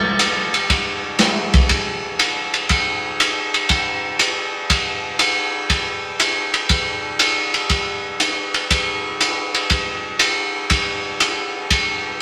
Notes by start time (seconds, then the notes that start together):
0.19 hi-hat pedal, ride
0.54 ride
0.70 kick, ride
1.19 snare, hi-hat pedal, ride
1.53 kick, ride
1.69 kick, ride
2.19 hi-hat pedal, ride
2.54 ride
2.69 kick, ride
3.20 hi-hat pedal, ride
3.54 ride
3.69 kick, ride
4.19 hi-hat pedal, ride
4.70 kick, ride
5.19 hi-hat pedal, ride
5.70 kick, ride
6.20 hi-hat pedal, ride
6.54 ride
6.69 kick, ride
7.19 hi-hat pedal, ride
7.54 ride
7.69 kick, ride
8.20 hi-hat pedal, ride
8.54 ride
8.70 kick, ride
9.21 hi-hat pedal, ride
9.54 ride
9.70 kick, ride
10.19 hi-hat pedal, ride
10.70 kick, ride
11.20 hi-hat pedal, ride
11.70 kick, ride